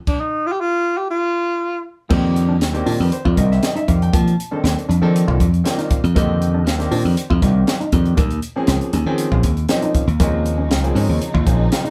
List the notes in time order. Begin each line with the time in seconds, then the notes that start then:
0.07 D4, kick, crash
0.21 D#4
0.47 F4
0.52 G4
0.61 F4
0.98 G4
1.11 F4
2.09 F2 D#3 A#3 C4 D4 G4, kick, crash
2.36 closed hi-hat
2.49 D4
2.61 D#2, snare, closed hi-hat
2.73 D#3 A#3 C4 D4 G4, closed hi-hat
2.86 A#2 D4, open hi-hat
3.00 F2 B4
3.12 C5, closed hi-hat
3.25 F2 F4 D5, kick
3.35 C2 D#3 A#3 C4 D4 A#4 D#5, kick, closed hi-hat
3.52 E5, snare
3.63 D#5, snare, closed hi-hat
3.76 D#4 E5, closed hi-hat
3.88 F2 D#3 A#3 C4 D4 G4 F5, kick, closed hi-hat
4.02 G5, closed hi-hat
4.13 F3 A#3 A5, kick, closed hi-hat
4.28 closed hi-hat
4.40 closed hi-hat
4.51 D#3 A#3 C4 D4 A4
4.64 D#2, snare, closed hi-hat
4.79 closed hi-hat
4.89 F2 D4, closed hi-hat
5.01 D#3 F3 A#3 C4 D4 A4
5.16 closed hi-hat
5.28 C2 F4, kick
5.40 F2, kick, closed hi-hat
5.54 closed hi-hat
5.64 D#3 A#3 C4 D4 F4, snare, closed hi-hat
5.78 D#4, snare, closed hi-hat
5.90 F5, kick, closed hi-hat
6.04 F2, closed hi-hat
6.15 F2 D3 D#3 A#3 C4 G4 D#5, kick, closed hi-hat
6.42 closed hi-hat
6.54 D4
6.66 D#2 F5, snare, closed hi-hat
6.78 D#3 A#3 C4 D4 G4, snare, closed hi-hat
6.91 A#2 D4 C5, open hi-hat
7.05 F2
7.17 closed hi-hat
7.30 F2 F4, kick
7.42 C2 D#3 A#3 C4 D4 G4, kick, snare, closed hi-hat
7.67 F5, snare, closed hi-hat
7.80 D#4, closed hi-hat
7.92 F2 D#3 A#3 C4 D4 G4, kick, closed hi-hat
8.06 closed hi-hat
8.17 D#2 A#3, kick, closed hi-hat
8.31 closed hi-hat
8.42 closed hi-hat
8.56 F3 A#3 C4 C#4 G#4
8.67 C#2, snare, closed hi-hat
8.81 closed hi-hat
8.93 D#2 C#4, closed hi-hat
9.06 D#3 F3 A#3 C4 C#4 G#4
9.18 closed hi-hat
9.32 A#1 F4, kick
9.43 D#2, kick, closed hi-hat
9.57 closed hi-hat
9.69 F3 A#3 C4 C#4 D#4, snare, closed hi-hat
9.82 D#4, closed hi-hat
9.95 F5, kick, closed hi-hat
10.07 D#2, closed hi-hat
10.19 D#2 C#3 F3 G#3 A#3 C4 C#4 D#4 G#4 D#5, kick, closed hi-hat
10.46 closed hi-hat
10.58 C#4
10.70 C#2 F5, snare, closed hi-hat
10.83 F3 A#3 C4 C#4 G#4, closed hi-hat
10.95 G#2 C#4 C#5, open hi-hat
11.09 D#2
11.22 closed hi-hat
11.34 D#2 F4, kick
11.46 A#1 F3 A#3 C4 C#4 G#4, kick, closed hi-hat
11.72 F5, snare, closed hi-hat
11.85 D#4, closed hi-hat